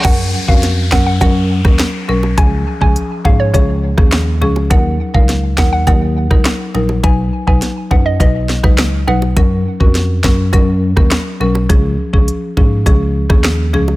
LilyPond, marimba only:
\new Staff \with { instrumentName = "Marimba" } { \time 4/4 \key ges \major \tempo 4 = 103 <ges des' bes'>8. <des' ges' bes'>8. <ges des' bes'>8 <ges des' bes'>16 r8 <ges des' bes'>16 r8 <ges des' bes'>16 r16 | <f des' aes'>8. <f des' aes'>8. <f des' aes'>8 <f des' aes'>16 r8 <f des' aes'>16 r8 <f des' aes'>16 r16 | <ges ees' bes'>8. <ges ees' bes'>8. <ges ees' bes'>8 <ges ees' bes'>16 r8 <ges ees' bes'>16 r8 <ges ees' bes'>16 r16 | <fis dis' b'>8. <fis dis' b'>8. <fis dis' b'>8 <fis dis' b'>16 r8 <fis dis' b'>16 r8 <fis dis' b'>16 r16 |
<ges des' bes'>8. <des' ges' bes'>8. <ges des' bes'>8 <ges des' bes'>16 r8 <ges des' bes'>16 r8 <ges des' bes'>16 r16 | <f des' aes'>8. <f des' aes'>8. <f des' aes'>8 <f des' aes'>16 r8 <f des' aes'>16 r8 <f des' aes'>16 r16 | }